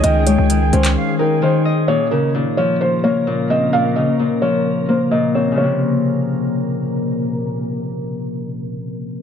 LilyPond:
<<
  \new Staff \with { instrumentName = "Flute" } { \time 4/4 \key bes \dorian \tempo 4 = 130 g''2 f''8 g''4. | r1 | r1 | r1 |
r1 | }
  \new Staff \with { instrumentName = "Felt piano" } { \time 4/4 \key bes \dorian ees''8 des''8 r8 c''4 bes'8 c''4 | des''8 bes'8 r8 des''8 c''8 des''4 ees''8 | f''8 ees''8 r8 des''4 c''8 ees''8 des''8 | des''2. r4 |
r1 | }
  \new Staff \with { instrumentName = "Ambient pad" } { \time 4/4 \key bes \dorian << { <ees aes'>1 | <des bes'>1~ | <des bes'>1 | <bes, bes bes'>1~ |
<bes, bes bes'>1 | } \\ { ees'1 | des'1 | bes1 | r1 |
r1 | } >> }
  \new Staff \with { instrumentName = "Harp" } { \clef bass \time 4/4 \key bes \dorian <ees ees' ees''>8 aes8 ees8 des'4 ees'8 ees8 ees''8 | bes,8 des8 bes,8 f4 bes8 bes,8 c'8 | bes,8 des8 bes,8 f4 bes8 bes,8 c'8 | <c des f bes>1~ |
<c des f bes>1 | }
  \new Staff \with { instrumentName = "808-style bass" } { \clef bass \time 4/4 \key bes \dorian des,8. des,8. des,8 r2 | r1 | r1 | r1 |
r1 | }
  \new DrumStaff \with { instrumentName = "Drums" } \drummode { \time 4/4 hh8 hh8 hh8 hh16 <hc hh>16 r4 r4 | r4 r4 r4 r4 | r4 r4 r4 r4 | r4 r4 r4 r4 |
r4 r4 r4 r4 | }
>>